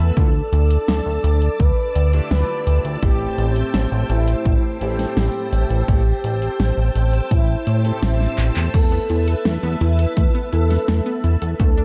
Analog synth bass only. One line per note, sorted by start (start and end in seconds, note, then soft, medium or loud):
0.00 0.12 E2 medium
0.17 0.42 D2 loud
0.53 0.78 D2 loud
0.88 1.01 D2 medium
1.06 1.19 D2 medium
1.24 1.49 D2 medium
1.60 1.72 D2 medium
1.95 2.21 D2 medium
2.31 2.44 D2 medium
2.67 2.79 D2 medium
2.85 2.97 D2 medium
3.03 3.28 A1 loud
3.38 3.63 A1 loud
3.74 3.87 A1 medium
3.92 4.04 A1 medium
4.10 4.35 A1 medium
4.45 4.58 A1 medium
4.81 5.06 A1 medium
5.17 5.29 A1 medium
5.53 5.65 A1 medium
5.70 5.83 A1 medium
5.88 6.14 A1 loud
6.24 6.49 A1 loud
6.60 6.72 A1 medium
6.78 6.90 A1 medium
6.96 7.21 A1 medium
7.31 7.56 A1 medium
7.67 7.92 A2 loud
8.03 8.28 A1 medium
8.38 8.51 A1 loud
8.56 8.69 E2 loud
8.74 8.99 E2 loud
9.10 9.35 E2 loud
9.45 9.58 E2 medium
9.63 9.76 E2 medium
9.81 10.06 E2 medium
10.17 10.29 E2 medium
10.53 10.78 E2 medium
10.88 11.01 E2 medium
11.24 11.37 E2 medium
11.42 11.55 E2 medium
11.60 11.85 D2 loud